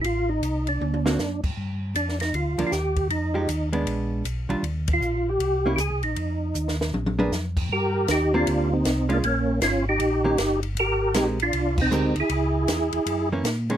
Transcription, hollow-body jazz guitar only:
X:1
M:4/4
L:1/8
Q:"Swing" 1/4=157
K:Eb
V:1 name="Hollow-body jazz guitar"
z4 z [D,B,C^F] z2 | z4 z [F,B,D] z2 | z [F,A,EG] z [A,_CD]3 z [E,G,DF] | z4 z [B,_D=E] z2 |
z4 z [B,DA_c] z2 | z3 [B,CG]3 z [A,_DF] | z4 z [E,B,_DG] z2 | z2 [A,CGB] z3 [A,CGB] z |
z4 z [_F,B,_D] z [E,A,D] |]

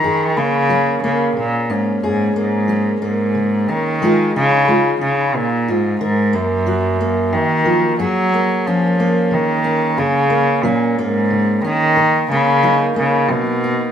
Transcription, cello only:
X:1
M:3/4
L:1/8
Q:1/4=90
K:F#
V:1 name="Cello" clef=bass
D, C,2 C, A,, G,, | G,, G,,2 G,,2 D,- | D, C,2 C, A,, G,, | G,, F,,3 D,2 |
F,2 E,2 D,2 | C,2 A,, G,,2 D,- | D, C,2 C, B,,2 |]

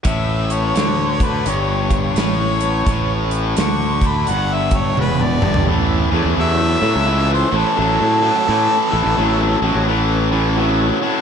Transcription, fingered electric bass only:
X:1
M:4/4
L:1/16
Q:"Swing" 1/4=86
K:Amix
V:1 name="Fingered electric bass" clef=bass
A,,,4 D,,4 G,,,4 A,,,4 | A,,,4 D,,4 G,,,4 E,,,2 G,,,2 | A,,,2 E,, E,, E,,2 A,, C,,3 A,,, z A,,, A,,2 z | A,, z A,,, A,,, A,,,2 A,,, A,,,8 z |]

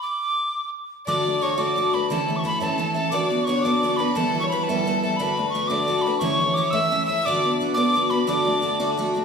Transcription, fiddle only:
X:1
M:6/8
L:1/16
Q:3/8=116
K:D
V:1 name="Fiddle"
z12 | d4 c2 d4 B2 | A6 A4 A2 | d4 c2 d4 B2 |
A3 c B2 A4 A2 | B6 d4 B2 | c6 e4 e2 | d4 z2 d4 B2 |
d8 z4 |]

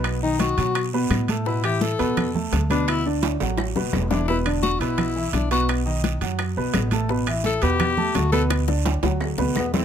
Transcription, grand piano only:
X:1
M:4/4
L:1/8
Q:1/4=170
K:Bphr
V:1 name="Grand piano"
[B,,B,B] [^D,^D^d]2 [F,Ff]2 [B,,B,B]2 [A,Aa] | [B,,B,B] [E,Ee]2 [B,,B,B]2 [A,Aa]2 [B,,B,B]- | [B,,B,B] [D,Dd]2 [F,Ff]2 [B,,B,B]2 [E,Ee] | [B,,B,B] [D,Dd]2 [B,,B,B]2 [E,Ee]2 [B,,B,B]- |
[B,,B,B] [^D,^D^d]2 [F,Ff]2 [B,,B,B]2 [A,Aa] | [B,,B,B] [E,Ee]2 [B,,B,B]2 [A,Aa]2 [B,,B,B]- | [B,,B,B] [D,Dd]2 [F,Ff]2 [B,,B,B]2 [E,Ee] |]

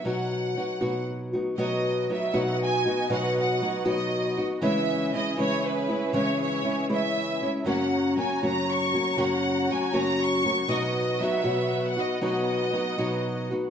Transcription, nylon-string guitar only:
X:1
M:6/8
L:1/8
Q:3/8=79
K:B
V:1 name="Nylon-string guitar"
[B,,F,B,DF]2 [F,B,DF] [B,,F,B,DF]2 [B,DF] | [B,,F,B,DF]2 [F,B,DF] [B,,F,B,DF]2 [B,DF] | [B,,F,B,DF]2 [F,B,DF] [B,,F,B,DF]2 [B,DF] | [C,E,G,CE]2 [E,G,CE] [C,E,G,CE]2 [G,CE] |
[C,E,G,CE]2 [E,G,CE] [C,E,G,CE]2 [G,CE] | [F,,C,F,A,CF]2 [F,A,CF] [F,,C,F,A,CF]2 [F,A,CF] | [F,,C,F,A,CF]2 [F,A,CF] [F,,C,F,A,CF]2 [F,A,CF] | [B,,F,B,DF]2 [F,B,DF] [B,,F,B,F]2 [B,DF] |
[B,,F,B,DF]2 [F,B,DF] [B,,F,B,DF]2 [B,DF] |]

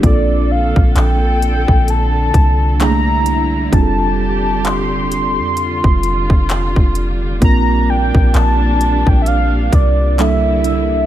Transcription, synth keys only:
X:1
M:4/4
L:1/8
Q:"Swing 16ths" 1/4=65
K:F
V:1 name="Synth keys"
[B,CDFA]6 [G,A,B,DE_A]2 | [G,CDF_A=A]8 | [B,CDFB]6 [G,B,DEA]2 |]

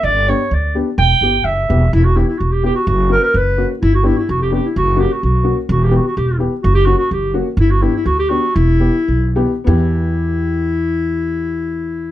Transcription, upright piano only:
X:1
M:2/4
L:1/16
Q:1/4=127
K:none
V:1 name="Upright piano"
z2 [B,DG] z3 [B,DG] z | z2 [B,EG] z3 [B,EG] z | z2 [B,EG] z3 [B,EG] z | z2 [^A,^C^F] z3 [A,CF] z |
z2 [B,DG] z3 [B,DG] z | z2 [^A,^C^F] z3 [A,CF] z | z2 [B,EG] z3 [B,EG] z | z2 [^A,^C^F] z3 [A,CF] z |
z2 [B,DG] z3 [B,DG] z | z2 [B,EG] z3 [B,EG] z | [B,EG]8- | [B,EG]8 |]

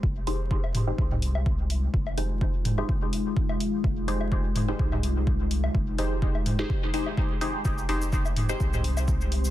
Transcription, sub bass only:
X:1
M:4/4
L:1/8
Q:"Swing 16ths" 1/4=126
K:Fm
V:1 name="Sub bass" clef=bass
F,,, F,,,3 C,,4 | F,,, F,,,3 z4 | F,,, F,,,3 C,,4 | F,,, F,,,3 z4 |
F,,, F,,,3 C,,4 |]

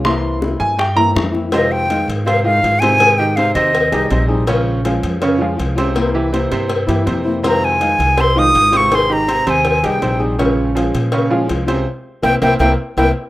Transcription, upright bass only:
X:1
M:4/4
L:1/8
Q:1/4=162
K:Fm
V:1 name="Upright bass" clef=bass
C,,3 G,,3 F,,2- | F,,3 A,,3 A,,2- | A,,3 E,,2 C,, B,,,2- | B,,,3 F,,3 C,,2- |
C,,3 G,,2 G,, F,,2- | F,,3 C,,3 A,,,2- | A,,,3 E,,2 C,, B,,,2- | B,,,3 B,,3 C,,2 |
z2 C,, C,, C,, z C,, z |]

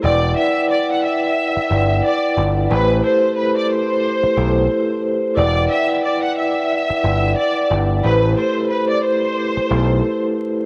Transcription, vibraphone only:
X:1
M:4/4
L:1/8
Q:"Swing 16ths" 1/4=90
K:Em
V:1 name="Vibraphone"
[EBdfg] [EBdfg]3 z [EBdfg]2 z | [A,EGBc] [A,EGAc]3 z [A,EGAc]2 z | [EBdfg] [EBdfg]3 z [EBdfg]2 z | [A,EGBc] [A,EGAc]3 z [A,EGAc]2 z |]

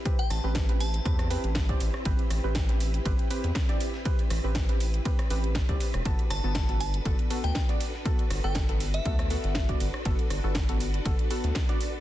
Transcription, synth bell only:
X:1
M:4/4
L:1/16
Q:"Swing 16ths" 1/4=120
K:Ador
V:1 name="Synth bell"
z g a z3 a6 z4 | z16 | z16 | z2 a4 a z4 g z4 |
z3 g z3 e6 z3 | z16 |]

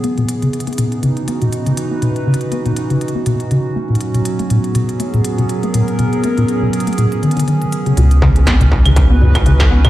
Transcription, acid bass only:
X:1
M:4/4
L:1/16
Q:"Swing 16ths" 1/4=121
K:C#m
V:1 name="Acid bass" clef=bass
B, B,, z C, z B, B,, z C, z B, B,, z C, z B, | B,, z C, z B, B,, z C, z B, B,, z C, z ^A, ^A,, | z B,, z ^A, ^A,, z B,, z A, A,, z B,, z A, A,, z | B,, z ^A, ^A,, z B,, z A, A,, z D, D, D, B,, z C, |
B,, z C, z B, B,, z C, z B, B,, z C, z B, B,, |]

